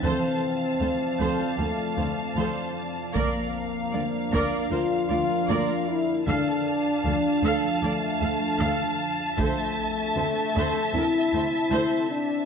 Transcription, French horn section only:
X:1
M:4/4
L:1/8
Q:1/4=77
K:Dm
V:1 name="French horn section"
C4 A,3 z | B,4 F3 E | D4 A,3 z | A,4 E3 D |]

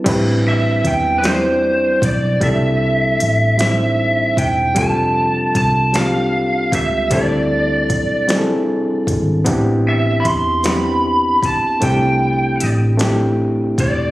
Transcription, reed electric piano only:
X:1
M:6/8
L:1/8
Q:3/8=51
K:Am
V:1 name="Reed electric piano"
[G,CDEB]2 z [G,CDEcd]2 z | [G,CDEA]2 z [G,CD^DEc]2 z | [G,CDFA]2 z [G,CDFG]2 z | [G,CDEA]2 z [G,CDE^GA]2 z |
[B,CDEG]2 z [B,CDEG]2 z | [A,CDEG]2 z [A,CDEG]2 z |]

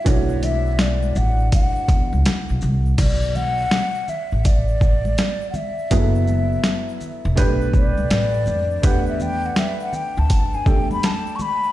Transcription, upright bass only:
X:1
M:4/4
L:1/16
Q:"Swing 16ths" 1/4=82
K:Bm
V:1 name="Upright bass" clef=bass
B,,,6 A,,,2 z2 E,, C,, z B,,, =C,,2 | B,,,4 z3 A,,,4- A,,, z4 | F,,,4 z3 E,,, B,,,3 =C,, A,,,2 ^E,,2 | E,,4 z3 D,, z2 E,,2 z4 |]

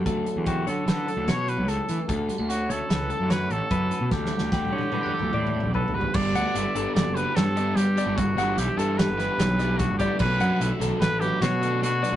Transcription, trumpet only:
X:1
M:5/4
L:1/8
Q:1/4=148
K:Edor
V:1 name="Trumpet"
z2 F A3 c B A2 | z2 F A3 B A3 | G8 A B | d4 d B A2 G2 |
F2 G A B4 F G | B3 z B G F2 F2 |]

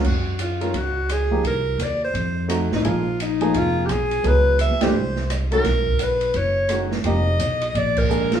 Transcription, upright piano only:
X:1
M:4/4
L:1/8
Q:"Swing" 1/4=172
K:F#
V:1 name="Upright piano"
z3 [D,G,CE] z3 [E,A,D=G] | z6 [=A,=C_E_G] z | [E,A,DG] z2 [E,A,DG]3 z2 | [F,B,=EG]3 [=E,=A,=D=G] z3 [_E,^G,C_G] |
z6 [D,G,CF] z | [=F,A,D=G] z4 z [^G,A,=D^G]2 |]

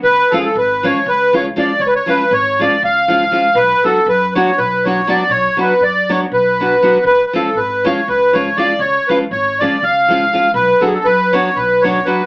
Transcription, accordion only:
X:1
M:7/8
L:1/16
Q:1/4=120
K:none
V:1 name="Accordion"
B2 A/2 ^G/2 A B2 ^c2 B2 c2 d2 | ^c/2 B/2 c B2 c2 d2 ^e6 | B2 A2 B2 ^c2 B2 c2 d2 | ^c2 B2 d2 c2 B6 |
B3/2 B/2 A2 B2 ^c2 B2 c2 d2 | ^c2 B2 c2 d2 ^e6 | B2 A/2 ^G/2 A B2 ^c2 B2 c2 B2 |]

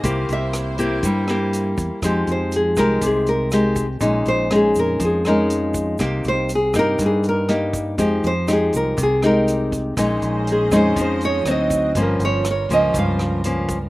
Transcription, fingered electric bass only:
X:1
M:4/4
L:1/16
Q:1/4=121
K:Fm
V:1 name="Fingered electric bass" clef=bass
C,,2 C,,6 G,,6 =E,, z | F,,2 F,,4 C,,2 C,,8 | B,,,2 B,,,4 F,,2 F,,8 | C,,2 C,,4 G,,2 G,,8 |
F,,2 F,,4 C,,2 C,,8 | B,,,2 B,,,4 F,,2 F,,4 =D,,4 | G,,,2 G,,,4 D,,2 D,,8 |]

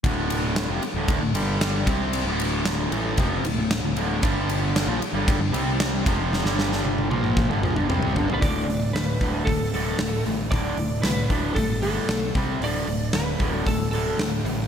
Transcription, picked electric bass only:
X:1
M:4/4
L:1/16
Q:1/4=114
K:G
V:1 name="Picked electric bass" clef=bass
D,,,4- D,,, =F,,, z D,,,2 D,,, G,,,4 C,,2- | C,, D,,,4- D,,, A,,,2 =F,,,2 D,,, D,,,2 D,,, D,,,2 | G,,,4- G,,, _B,,, z G,,,2 G,,, C,,4 =F,,,2- | =F,,, G,,,4- G,,, _B,,,3 G,,, B,,, G,,, C,,2 G,,, B,,, |
D,,,2 D,,,2 D,,,2 D,,,2 D,,,2 D,,,2 D,,,2 A,,,2 | D,,,2 D,,,2 C,,2 D,,,2 G,,,4 B,,,2 C,,2 | D,,,2 D,,,2 D,,,2 D,,,2 D,,,2 D,,,2 D,,,2 A,,,2 |]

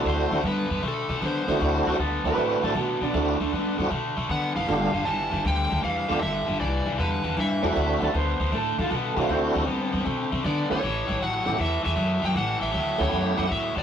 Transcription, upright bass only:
X:1
M:4/4
L:1/8
Q:"Swing" 1/4=156
K:Dmix
V:1 name="Upright bass" clef=bass
D,, D,, G,, G,, B,, B,, D, D, | D,, D,, D,, D,, A,, A,, B,, B,, | D,, D,, G,, G,, B,, B,, D, F,,, | G,,, G,,, G,,, G,,, D,, D,, E,, E,, |
G,,, G,,, C,, C,, E,, E,, G,, E,, | D,, D,, D,, D,, A,, A,, B,, B,, | D,, D,, G,, G,, B,, B,, D, D, | A,,, A,,, A,,, A,,, E,, E,, F,, F,, |
A,,, A,,, D,, D,, F,, F,, A,, A,, |]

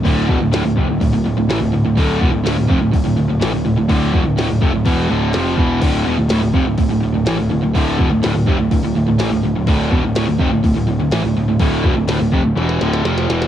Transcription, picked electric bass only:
X:1
M:4/4
L:1/16
Q:1/4=125
K:Dm
V:1 name="Picked electric bass" clef=bass
D,,,2 E,,, D,,, D,,, D,,, F,,, D,,, D,,, D,,, D,,, D,,, A,,, D,,, D,,, D,,, | D,,,2 E,,, D,,, D,,, D,,, F,,, D,,, D,,, D,,, D,,, D,,, A,,, D,,, D,,, D,,, | D,,,2 E,,, D,,, D,,, D,,, F,,, D,,, E,,,2 D,,,2 F,,,2 E,,,2 | D,,,2 E,,, D,,, D,,, D,,, F,,, D,,, D,,, D,,, D,,, D,,, A,,, D,,, D,,, D,,, |
D,,,2 E,,, D,,, D,,, D,,, F,,, D,,, D,,, D,,, D,,, D,,, A,,, D,,, D,,, D,,, | D,,,2 E,,, D,,, D,,, D,,, F,,, D,,, D,,, D,,, D,,, D,,, A,,, D,,, D,,, D,,, | D,,,2 E,,, D,,, D,,, D,,, F,,, D,,, E,,,2 D,,,2 F,,,2 E,,,2 |]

